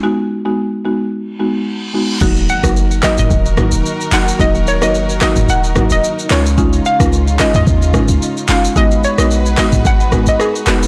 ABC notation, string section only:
X:1
M:4/4
L:1/8
Q:"Swing 16ths" 1/4=110
K:Ebm
V:1 name="String section"
z8 | [E,EGB]8- | [E,EGB]6- [E,EGB] [D,DF]- | [D,DF]8 |
[A,EGc]8 |]